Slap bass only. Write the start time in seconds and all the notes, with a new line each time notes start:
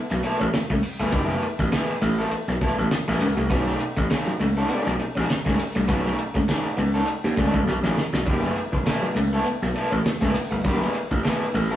0.11 B1
0.41 A1
0.54 muted slap bass stroke
0.70 C#2
1.00 G1
1.13 F#1
1.59 A1
2.02 A1
2.31 muted slap bass stroke
2.48 B1
2.78 A1
3.08 A1
3.21 C#2
3.37 C2
3.51 B1
3.97 A1
4.40 C#2
4.70 muted slap bass stroke
4.87 B1
5.16 A1
5.29 muted slap bass stroke
5.46 C#2
5.76 C2
5.89 B1
6.36 C#2
6.78 C#2
7.24 D#2
7.38 C#2
7.54 C#2
7.67 B1
7.83 A1
8.13 B1
8.27 F#1
8.73 E1
9.16 C#2
9.46 muted slap bass stroke
9.62 B1
9.92 A1
10.05 muted slap bass stroke
10.22 C#2
10.51 G1
10.65 F#1
11.12 A1
11.54 A1